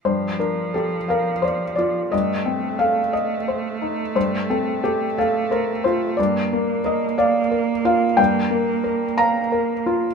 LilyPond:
<<
  \new Staff \with { instrumentName = "Felt piano" } { \time 6/8 \key g \minor \tempo 4. = 59 << { c''8 bes'8 a'8 bes'8 c''8 d''8 | ees''4 f''8 ees''4. | c''8 a'8 g'8 a'8 bes'8 c''8 | d''4 ees''8 d''4 f''8 |
g''4. bes''4. | } \\ { g,8 d'8 g'8 f''8 d''8 f'8 | g,8 c'8 a'4 c''8 ees'8 | g,8 c'8 a'8 f''8 c''8 f'8 | g,8 bes8 bes'8 f''8 bes'8 f'8 |
g,8 bes8 bes'8 f''8 bes'8 f'8 | } >> }
  \new Staff \with { instrumentName = "Cello" } { \time 6/8 \key g \minor f2. | a2.~ | a2. | bes2.~ |
bes2. | }
>>